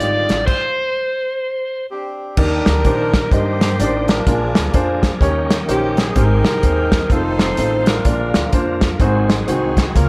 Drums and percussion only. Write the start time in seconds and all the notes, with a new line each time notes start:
0.00 closed hi-hat
0.29 snare, closed hi-hat
0.47 kick, crash
2.37 kick, crash
2.66 snare, closed hi-hat
2.85 kick, closed hi-hat
3.14 kick, snare, closed hi-hat
3.32 kick, closed hi-hat
3.61 snare, closed hi-hat
3.80 closed hi-hat
4.08 snare, closed hi-hat
4.27 kick, closed hi-hat
4.55 snare, closed hi-hat
4.74 kick, closed hi-hat
5.03 kick, snare, closed hi-hat
5.21 kick, closed hi-hat
5.50 snare, closed hi-hat
5.69 closed hi-hat
5.97 snare, closed hi-hat
6.16 kick, closed hi-hat
6.45 snare, closed hi-hat
6.63 kick, closed hi-hat
6.92 kick, snare, closed hi-hat
7.10 kick, closed hi-hat
7.39 snare, closed hi-hat
7.57 closed hi-hat
7.86 snare, closed hi-hat
8.05 kick, closed hi-hat
8.34 snare, closed hi-hat
8.53 kick, closed hi-hat
8.81 kick, snare, closed hi-hat
9.00 kick, closed hi-hat
9.30 snare, closed hi-hat
9.48 closed hi-hat
9.77 kick, snare, closed hi-hat
9.96 kick, closed hi-hat